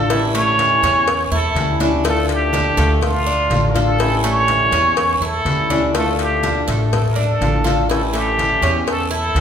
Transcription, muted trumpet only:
Already playing: A4
0.33 C#5
1.33 A4
2.07 A4
2.32 G4
3.03 F4
3.70 A#4
3.77 A4
4.25 C#5
5.23 A4
5.96 A4
6.21 G4
6.95 A4
7.11 A#4
7.19 A4
7.92 A4
8.16 G4
8.89 A4
9.13 A4

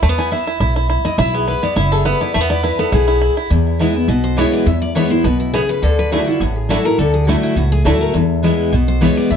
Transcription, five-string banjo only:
Already playing: E4
0.03 A3
0.09 B3
0.19 E4
0.32 E4
0.47 E4
0.60 E4
0.76 E4
0.90 E4
1.05 E4
1.19 E4
1.34 B3
1.47 E4
1.63 B3
1.76 E4
1.92 A4
2.06 B3
2.21 E4
2.34 A3
2.41 B3
2.50 E4
2.63 E4
2.79 B3
2.92 E4
3.08 E4
3.21 E4
3.37 E4
3.80 B3 E4
4.38 B3 E4
4.96 B3 E4
5.54 B3 E4
6.12 A3 D4 E4
6.70 A3 D4 E4
7.28 A3 D4 E4
7.86 A3 D4 E4
8.44 B3 E4
9.02 B3 E4

